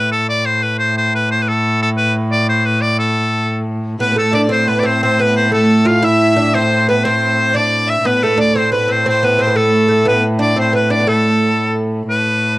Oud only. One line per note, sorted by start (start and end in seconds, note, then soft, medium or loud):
4.00 4.11 B3 medium
4.12 4.16 B3 medium
4.16 4.34 A3 medium
4.33 4.48 D4 medium
4.49 4.67 C4 medium
4.68 4.85 B3 medium
4.83 5.01 C4 medium
5.03 5.20 C4 medium
5.19 5.51 B3 medium
5.52 5.87 A3 medium
5.85 6.02 F4 medium
6.02 6.36 E4 medium
6.36 6.54 D4 medium
6.55 6.89 C4 medium
6.89 7.05 B3 medium
7.05 7.54 C4 medium
7.55 8.07 D4 medium
8.05 8.23 B3 medium
8.24 8.40 A3 medium
8.38 8.55 D4 medium
8.56 8.73 C4 medium
8.72 8.90 B3 medium
8.88 9.04 C4 medium
9.06 9.24 C4 medium
9.23 9.40 B3 medium
9.39 9.50 C4 medium
9.47 9.55 B3 medium
9.56 9.87 A3 medium
9.89 10.05 A3 medium
10.05 10.22 B3 medium
10.39 10.56 D4 medium
10.56 10.74 C4 medium
10.73 10.89 B3 medium
10.90 11.01 D4 medium
11.00 11.07 B3 soft
11.07 11.71 A3 medium